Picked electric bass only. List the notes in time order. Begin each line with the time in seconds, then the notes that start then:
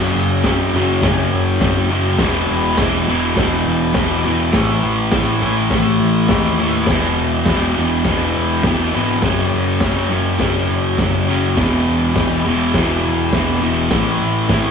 Already playing: F#1
0.15 F#1
0.44 F#1
0.73 F#1
1.03 F#1
1.33 F#1
1.61 F#1
2.19 E1
2.49 E1
2.78 E1
3.07 E1
3.36 E1
3.66 E1
3.94 E1
4.25 E1
4.54 A1
4.83 A1
5.12 A1
5.42 A1
5.71 A1
6.00 A1
6.29 D#2
6.87 E1
7.17 E1
7.46 E1
7.77 E1
8.05 E1
8.35 E1
8.63 E1
8.94 G#1
9.23 F#1
9.53 F#1
9.81 F#1
10.10 F#1
10.39 F#1
10.69 F#1
10.99 F#1
11.57 E1
11.87 E1
12.16 E1
12.45 E1
12.74 E1
13.05 E1
13.33 E1
13.62 E1
13.91 A1
14.20 A1
14.49 A1